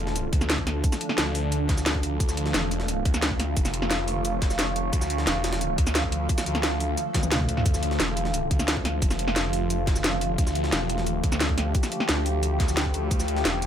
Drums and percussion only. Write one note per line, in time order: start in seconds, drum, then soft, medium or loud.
0.07 snare medium
0.16 closed hi-hat medium
0.16 cabasa soft
0.33 kick loud
0.33 closed hi-hat medium
0.41 snare soft
0.41 cabasa medium
0.50 snare loud
0.50 closed hi-hat medium
0.50 cabasa soft
0.58 kick medium
0.67 snare soft
0.67 closed hi-hat medium
0.84 kick loud
0.84 closed hi-hat medium
0.84 cabasa soft
0.92 snare medium
0.92 snare soft
0.92 cabasa medium
1.01 closed hi-hat medium
1.09 snare medium
1.18 snare loud
1.18 closed hi-hat medium
1.18 cabasa soft
1.35 closed hi-hat medium
1.35 open hi-hat medium
1.35 cabasa soft
1.52 closed hi-hat medium
1.52 cabasa soft
1.69 kick loud
1.69 snare soft
1.69 closed hi-hat medium
1.69 cabasa soft
1.77 snare soft
1.77 cabasa medium
1.86 snare loud
1.86 closed hi-hat medium
1.86 cabasa soft
1.95 kick medium
2.03 closed hi-hat medium
2.03 cabasa soft
2.20 kick loud
2.20 closed hi-hat medium
2.20 cabasa medium
2.29 snare soft
2.29 cabasa medium
2.37 closed hi-hat medium
2.46 snare medium
2.54 snare loud
2.54 closed hi-hat medium
2.54 cabasa medium
2.71 closed hi-hat medium
2.71 cabasa soft
2.80 snare medium
2.88 closed hi-hat medium
2.88 cabasa medium
3.05 kick loud
3.05 closed hi-hat medium
3.14 snare soft
3.14 cabasa medium
3.22 snare loud
3.22 closed hi-hat medium
3.22 cabasa soft
3.31 kick medium
3.39 snare soft
3.39 closed hi-hat medium
3.56 kick loud
3.56 closed hi-hat medium
3.56 cabasa medium
3.65 snare medium
3.65 snare soft
3.65 cabasa medium
3.74 closed hi-hat medium
3.82 snare medium
3.91 snare loud
3.91 closed hi-hat medium
3.91 cabasa medium
4.08 closed hi-hat medium
4.08 open hi-hat medium
4.08 cabasa soft
4.25 closed hi-hat medium
4.25 cabasa medium
4.42 kick loud
4.42 snare soft
4.42 closed hi-hat medium
4.50 snare soft
4.50 cabasa medium
4.59 snare loud
4.59 closed hi-hat medium
4.59 cabasa medium
4.76 closed hi-hat medium
4.93 kick loud
4.93 closed hi-hat medium
4.93 cabasa medium
5.01 snare soft
5.01 cabasa medium
5.10 closed hi-hat medium
5.18 snare medium
5.27 snare loud
5.27 closed hi-hat medium
5.27 cabasa medium
5.44 snare loud
5.44 closed hi-hat medium
5.44 cabasa soft
5.53 snare loud
5.53 closed hi-hat medium
5.61 closed hi-hat medium
5.61 cabasa medium
5.78 kick loud
5.78 closed hi-hat medium
5.87 snare soft
5.87 cabasa medium
5.95 snare loud
5.95 closed hi-hat medium
5.95 cabasa medium
6.04 kick medium
6.12 closed hi-hat loud
6.29 kick loud
6.29 closed hi-hat medium
6.29 cabasa medium
6.38 snare loud
6.38 snare soft
6.38 closed hi-hat medium
6.38 cabasa medium
6.46 closed hi-hat medium
6.46 cabasa soft
6.55 snare medium
6.55 closed hi-hat medium
6.63 snare loud
6.63 closed hi-hat medium
6.63 cabasa medium
6.80 closed hi-hat medium
6.80 open hi-hat medium
6.80 cabasa soft
6.97 closed hi-hat medium
6.97 cabasa medium
7.14 kick loud
7.14 snare loud
7.14 snare soft
7.14 closed hi-hat medium
7.14 closed hi-hat loud
7.14 high tom medium
7.14 cabasa soft
7.23 high tom medium
7.23 cabasa medium
7.32 snare loud
7.32 closed hi-hat medium
7.32 mid tom medium
7.32 cabasa medium
7.40 kick medium
7.40 mid tom medium
7.49 closed hi-hat loud
7.49 cabasa soft
7.57 snare soft
7.57 mid tom medium
7.66 kick loud
7.66 closed hi-hat medium
7.66 cabasa medium
7.74 snare soft
7.74 cabasa medium
7.83 closed hi-hat loud
7.83 closed hi-hat medium
7.91 snare medium
8.00 snare loud
8.00 closed hi-hat medium
8.00 cabasa medium
8.17 closed hi-hat medium
8.17 closed hi-hat loud
8.17 cabasa soft
8.25 snare medium
8.34 closed hi-hat medium
8.34 cabasa medium
8.51 kick loud
8.51 closed hi-hat loud
8.51 closed hi-hat medium
8.59 snare medium
8.59 cabasa medium
8.68 snare loud
8.68 closed hi-hat medium
8.68 cabasa soft
8.76 kick medium
8.85 snare soft
8.85 closed hi-hat medium
8.85 closed hi-hat loud
9.02 kick loud
9.02 closed hi-hat medium
9.02 cabasa soft
9.11 snare medium
9.11 snare soft
9.11 cabasa medium
9.19 closed hi-hat medium
9.28 snare medium
9.36 snare loud
9.36 closed hi-hat medium
9.36 cabasa soft
9.53 closed hi-hat medium
9.53 open hi-hat medium
9.53 cabasa soft
9.70 closed hi-hat medium
9.70 cabasa soft
9.87 kick loud
9.87 snare soft
9.87 closed hi-hat medium
9.96 snare soft
9.96 cabasa medium
10.04 snare loud
10.04 closed hi-hat medium
10.04 cabasa soft
10.21 closed hi-hat medium
10.21 closed hi-hat loud
10.38 kick loud
10.38 closed hi-hat medium
10.38 cabasa soft
10.47 snare soft
10.47 cabasa medium
10.55 closed hi-hat medium
10.64 snare medium
10.72 snare loud
10.72 closed hi-hat medium
10.72 cabasa soft
10.89 closed hi-hat medium
10.89 cabasa soft
10.98 snare medium
11.06 closed hi-hat medium
11.06 cabasa soft
11.23 kick loud
11.23 closed hi-hat medium
11.32 snare soft
11.32 cabasa medium
11.40 snare loud
11.40 closed hi-hat medium
11.40 cabasa soft
11.49 kick medium
11.58 snare soft
11.58 closed hi-hat medium
11.75 kick loud
11.75 closed hi-hat medium
11.75 cabasa soft
11.83 snare medium
11.83 snare soft
11.83 cabasa medium
11.92 closed hi-hat medium
12.00 snare medium
12.09 snare loud
12.09 closed hi-hat medium
12.09 cabasa soft
12.26 closed hi-hat medium
12.26 open hi-hat medium
12.26 cabasa soft
12.43 closed hi-hat medium
12.43 cabasa soft
12.60 kick loud
12.60 snare soft
12.60 closed hi-hat medium
12.60 cabasa soft
12.68 snare soft
12.68 cabasa medium
12.77 snare loud
12.77 closed hi-hat medium
12.77 cabasa soft
12.85 kick medium
12.94 closed hi-hat medium
12.94 cabasa soft
13.11 kick loud
13.11 closed hi-hat medium
13.11 cabasa soft
13.20 snare soft
13.20 cabasa medium
13.28 closed hi-hat medium
13.37 snare medium
13.45 snare loud
13.45 closed hi-hat medium
13.45 cabasa medium
13.62 closed hi-hat medium
13.62 cabasa soft